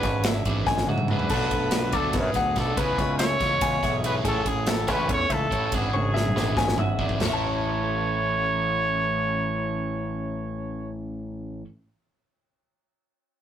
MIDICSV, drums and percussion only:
0, 0, Header, 1, 2, 480
1, 0, Start_track
1, 0, Key_signature, 3, "major"
1, 0, Tempo, 421644
1, 1487, Time_signature, 7, 3, 24, 8
1, 15274, End_track
2, 0, Start_track
2, 0, Title_t, "Drums"
2, 35, Note_on_c, 9, 51, 80
2, 40, Note_on_c, 9, 36, 79
2, 47, Note_on_c, 9, 38, 35
2, 148, Note_off_c, 9, 51, 0
2, 154, Note_off_c, 9, 36, 0
2, 161, Note_off_c, 9, 38, 0
2, 268, Note_on_c, 9, 51, 99
2, 281, Note_on_c, 9, 38, 113
2, 382, Note_off_c, 9, 51, 0
2, 395, Note_off_c, 9, 38, 0
2, 516, Note_on_c, 9, 51, 81
2, 520, Note_on_c, 9, 36, 78
2, 629, Note_off_c, 9, 51, 0
2, 633, Note_off_c, 9, 36, 0
2, 758, Note_on_c, 9, 36, 111
2, 761, Note_on_c, 9, 38, 64
2, 872, Note_off_c, 9, 36, 0
2, 874, Note_off_c, 9, 38, 0
2, 883, Note_on_c, 9, 38, 69
2, 989, Note_on_c, 9, 48, 84
2, 997, Note_off_c, 9, 38, 0
2, 1103, Note_off_c, 9, 48, 0
2, 1111, Note_on_c, 9, 47, 70
2, 1225, Note_off_c, 9, 47, 0
2, 1232, Note_on_c, 9, 45, 93
2, 1346, Note_off_c, 9, 45, 0
2, 1359, Note_on_c, 9, 43, 84
2, 1473, Note_off_c, 9, 43, 0
2, 1474, Note_on_c, 9, 49, 94
2, 1474, Note_on_c, 9, 51, 91
2, 1483, Note_on_c, 9, 36, 111
2, 1588, Note_off_c, 9, 49, 0
2, 1588, Note_off_c, 9, 51, 0
2, 1597, Note_off_c, 9, 36, 0
2, 1718, Note_on_c, 9, 51, 73
2, 1722, Note_on_c, 9, 36, 75
2, 1832, Note_off_c, 9, 51, 0
2, 1835, Note_off_c, 9, 36, 0
2, 1945, Note_on_c, 9, 51, 102
2, 1958, Note_on_c, 9, 38, 117
2, 2059, Note_off_c, 9, 51, 0
2, 2072, Note_off_c, 9, 38, 0
2, 2190, Note_on_c, 9, 51, 73
2, 2198, Note_on_c, 9, 36, 83
2, 2304, Note_off_c, 9, 51, 0
2, 2312, Note_off_c, 9, 36, 0
2, 2426, Note_on_c, 9, 51, 103
2, 2436, Note_on_c, 9, 36, 115
2, 2438, Note_on_c, 9, 38, 38
2, 2540, Note_off_c, 9, 51, 0
2, 2550, Note_off_c, 9, 36, 0
2, 2552, Note_off_c, 9, 38, 0
2, 2663, Note_on_c, 9, 51, 70
2, 2676, Note_on_c, 9, 38, 35
2, 2677, Note_on_c, 9, 36, 77
2, 2777, Note_off_c, 9, 51, 0
2, 2790, Note_off_c, 9, 38, 0
2, 2791, Note_off_c, 9, 36, 0
2, 2911, Note_on_c, 9, 51, 70
2, 2918, Note_on_c, 9, 36, 78
2, 2924, Note_on_c, 9, 38, 39
2, 3025, Note_off_c, 9, 51, 0
2, 3032, Note_off_c, 9, 36, 0
2, 3038, Note_off_c, 9, 38, 0
2, 3157, Note_on_c, 9, 36, 113
2, 3158, Note_on_c, 9, 51, 99
2, 3271, Note_off_c, 9, 36, 0
2, 3272, Note_off_c, 9, 51, 0
2, 3398, Note_on_c, 9, 36, 83
2, 3399, Note_on_c, 9, 51, 76
2, 3411, Note_on_c, 9, 38, 35
2, 3512, Note_off_c, 9, 36, 0
2, 3513, Note_off_c, 9, 51, 0
2, 3525, Note_off_c, 9, 38, 0
2, 3632, Note_on_c, 9, 51, 105
2, 3645, Note_on_c, 9, 38, 104
2, 3746, Note_off_c, 9, 51, 0
2, 3759, Note_off_c, 9, 38, 0
2, 3875, Note_on_c, 9, 36, 77
2, 3875, Note_on_c, 9, 51, 77
2, 3887, Note_on_c, 9, 38, 37
2, 3989, Note_off_c, 9, 36, 0
2, 3989, Note_off_c, 9, 51, 0
2, 4001, Note_off_c, 9, 38, 0
2, 4112, Note_on_c, 9, 51, 115
2, 4117, Note_on_c, 9, 36, 119
2, 4226, Note_off_c, 9, 51, 0
2, 4230, Note_off_c, 9, 36, 0
2, 4358, Note_on_c, 9, 36, 78
2, 4366, Note_on_c, 9, 51, 82
2, 4378, Note_on_c, 9, 38, 34
2, 4472, Note_off_c, 9, 36, 0
2, 4480, Note_off_c, 9, 51, 0
2, 4492, Note_off_c, 9, 38, 0
2, 4599, Note_on_c, 9, 51, 85
2, 4713, Note_off_c, 9, 51, 0
2, 4835, Note_on_c, 9, 36, 107
2, 4838, Note_on_c, 9, 51, 107
2, 4949, Note_off_c, 9, 36, 0
2, 4952, Note_off_c, 9, 51, 0
2, 5074, Note_on_c, 9, 36, 79
2, 5075, Note_on_c, 9, 51, 83
2, 5187, Note_off_c, 9, 36, 0
2, 5188, Note_off_c, 9, 51, 0
2, 5309, Note_on_c, 9, 51, 109
2, 5321, Note_on_c, 9, 38, 118
2, 5423, Note_off_c, 9, 51, 0
2, 5435, Note_off_c, 9, 38, 0
2, 5554, Note_on_c, 9, 51, 75
2, 5555, Note_on_c, 9, 36, 77
2, 5567, Note_on_c, 9, 38, 35
2, 5668, Note_off_c, 9, 51, 0
2, 5669, Note_off_c, 9, 36, 0
2, 5681, Note_off_c, 9, 38, 0
2, 5796, Note_on_c, 9, 36, 106
2, 5796, Note_on_c, 9, 51, 106
2, 5909, Note_off_c, 9, 51, 0
2, 5910, Note_off_c, 9, 36, 0
2, 6035, Note_on_c, 9, 51, 72
2, 6036, Note_on_c, 9, 36, 70
2, 6149, Note_off_c, 9, 51, 0
2, 6150, Note_off_c, 9, 36, 0
2, 6277, Note_on_c, 9, 36, 74
2, 6284, Note_on_c, 9, 51, 74
2, 6391, Note_off_c, 9, 36, 0
2, 6398, Note_off_c, 9, 51, 0
2, 6511, Note_on_c, 9, 51, 88
2, 6516, Note_on_c, 9, 36, 107
2, 6624, Note_off_c, 9, 51, 0
2, 6630, Note_off_c, 9, 36, 0
2, 6758, Note_on_c, 9, 48, 69
2, 6872, Note_off_c, 9, 48, 0
2, 7020, Note_on_c, 9, 38, 73
2, 7123, Note_on_c, 9, 47, 69
2, 7133, Note_off_c, 9, 38, 0
2, 7237, Note_off_c, 9, 47, 0
2, 7253, Note_on_c, 9, 38, 75
2, 7367, Note_off_c, 9, 38, 0
2, 7477, Note_on_c, 9, 36, 111
2, 7485, Note_on_c, 9, 38, 94
2, 7590, Note_off_c, 9, 36, 0
2, 7599, Note_off_c, 9, 38, 0
2, 7608, Note_on_c, 9, 38, 88
2, 7716, Note_on_c, 9, 45, 98
2, 7722, Note_off_c, 9, 38, 0
2, 7830, Note_off_c, 9, 45, 0
2, 7955, Note_on_c, 9, 36, 99
2, 8069, Note_off_c, 9, 36, 0
2, 8073, Note_on_c, 9, 36, 84
2, 8187, Note_off_c, 9, 36, 0
2, 8198, Note_on_c, 9, 43, 99
2, 8198, Note_on_c, 9, 49, 85
2, 8210, Note_on_c, 9, 38, 99
2, 8312, Note_off_c, 9, 43, 0
2, 8312, Note_off_c, 9, 49, 0
2, 8324, Note_off_c, 9, 38, 0
2, 15274, End_track
0, 0, End_of_file